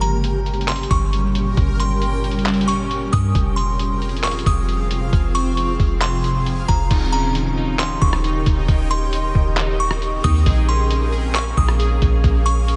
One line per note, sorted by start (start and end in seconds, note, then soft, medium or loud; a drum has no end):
0.00 0.87 G1 loud
0.00 3.32 A#2 medium
0.00 3.31 C#3 medium
0.00 3.32 G3 medium
0.00 3.31 C#4 medium
0.00 3.32 C#4 medium
0.00 3.31 G4 medium
0.00 3.31 A#4 medium
0.00 3.31 G5 medium
0.00 0.64 A#5 medium
0.00 closed hi-hat medium
0.24 closed hi-hat medium
0.46 closed hi-hat soft
0.54 closed hi-hat soft
0.61 closed hi-hat medium
0.68 0.90 C6 medium
0.68 clap loud
0.68 closed hi-hat medium
0.76 closed hi-hat medium
0.83 closed hi-hat medium
0.91 1.55 G1 loud
0.91 1.53 C#6 medium
0.91 kick medium
0.91 closed hi-hat medium
1.13 closed hi-hat medium
1.35 closed hi-hat medium
1.57 3.09 G1 loud
1.57 kick loud
1.57 closed hi-hat medium
1.80 2.65 C6 medium
1.80 closed hi-hat medium
2.02 closed hi-hat medium
2.24 closed hi-hat soft
2.31 closed hi-hat soft
2.39 closed hi-hat medium
2.46 clap loud
2.46 closed hi-hat medium
2.54 closed hi-hat medium
2.61 closed hi-hat medium
2.68 3.10 C#6 medium
2.68 closed hi-hat medium
2.91 closed hi-hat medium
3.13 3.34 G2 loud
3.13 3.34 D#6 medium
3.13 kick medium
3.13 closed hi-hat medium
3.35 4.42 F1 loud
3.35 6.87 G#2 medium
3.35 6.87 C3 medium
3.35 6.87 F3 medium
3.35 6.87 C4 medium
3.35 6.87 F4 medium
3.35 6.87 G#4 medium
3.35 6.87 F5 medium
3.35 kick loud
3.35 closed hi-hat medium
3.56 4.19 C6 medium
3.56 closed hi-hat medium
3.79 closed hi-hat medium
4.02 closed hi-hat soft
4.09 closed hi-hat soft
4.17 closed hi-hat medium
4.24 4.45 C#6 medium
4.24 clap loud
4.24 closed hi-hat medium
4.31 closed hi-hat medium
4.39 closed hi-hat medium
4.46 5.10 F1 loud
4.46 5.09 D#6 medium
4.46 kick loud
4.46 closed hi-hat medium
4.69 closed hi-hat medium
4.91 closed hi-hat medium
5.13 5.77 F1 loud
5.13 kick loud
5.13 closed hi-hat medium
5.35 5.98 C#6 medium
5.35 closed hi-hat medium
5.57 closed hi-hat medium
5.80 6.65 F1 loud
5.80 kick medium
5.80 closed hi-hat medium
6.02 6.64 C6 loud
6.02 clap loud
6.02 closed hi-hat medium
6.24 closed hi-hat medium
6.46 closed hi-hat medium
6.68 6.90 F1 loud
6.68 6.90 A#5 medium
6.68 kick medium
6.68 closed hi-hat medium
6.90 7.98 D#1 loud
6.90 10.43 C#3 medium
6.90 7.56 D#4 medium
6.90 10.43 D#4 medium
6.90 10.43 G4 medium
6.90 12.20 A#4 medium
6.90 8.67 C#5 medium
6.90 10.43 D#5 medium
6.90 10.43 G5 medium
6.90 kick loud
6.90 closed hi-hat medium
6.90 crash loud
7.12 7.79 C#4 medium
7.12 7.75 A#5 medium
7.12 closed hi-hat medium
7.35 8.01 D#3 medium
7.35 closed hi-hat medium
7.57 8.23 D#4 loud
7.79 9.13 C#4 medium
7.79 8.01 C6 medium
7.79 clap loud
7.79 closed hi-hat medium
8.02 8.44 D#1 loud
8.02 8.67 D#3 medium
8.02 8.64 C#6 medium
8.02 kick loud
8.13 cross-stick medium
8.24 9.57 D#4 medium
8.24 closed hi-hat medium
8.46 8.68 D#1 loud
8.46 kick loud
8.46 closed hi-hat medium
8.68 9.32 D#1 loud
8.68 9.34 D#3 medium
8.68 10.44 C4 medium
8.68 kick loud
8.68 closed hi-hat medium
8.91 9.76 C6 medium
8.91 closed hi-hat medium
9.13 closed hi-hat medium
9.35 10.20 D#1 loud
9.35 10.46 D#3 medium
9.35 kick loud
9.57 10.23 D#4 loud
9.57 clap loud
9.57 closed hi-hat medium
9.80 10.22 C#6 medium
9.91 cross-stick medium
10.02 closed hi-hat medium
10.24 10.46 D#2 loud
10.24 10.46 D#4 loud
10.24 10.45 D#6 medium
10.24 kick medium
10.24 closed hi-hat medium
10.46 11.53 A#1 loud
10.46 12.76 C#4 medium
10.46 11.11 G#4 loud
10.46 12.76 G#4 medium
10.46 12.76 A#4 medium
10.46 12.76 F5 medium
10.46 12.76 G#5 medium
10.46 kick loud
10.46 closed hi-hat medium
10.69 11.34 C#4 medium
10.69 11.31 C6 medium
10.69 closed hi-hat medium
10.91 11.56 A#3 medium
10.91 closed hi-hat medium
11.12 11.78 G#4 medium
11.35 12.68 C#4 medium
11.35 11.56 C#6 medium
11.35 clap loud
11.35 closed hi-hat medium
11.57 12.00 A#1 loud
11.57 12.23 A#3 medium
11.57 12.20 D#6 medium
11.57 kick loud
11.68 cross-stick medium
11.79 12.76 G#4 loud
11.79 closed hi-hat medium
12.02 12.23 A#1 loud
12.02 kick loud
12.02 closed hi-hat medium
12.24 12.76 A#1 loud
12.24 12.76 A#3 medium
12.24 12.76 C#5 medium
12.24 kick loud
12.24 closed hi-hat medium
12.46 12.76 C#6 medium
12.46 closed hi-hat medium
12.68 closed hi-hat medium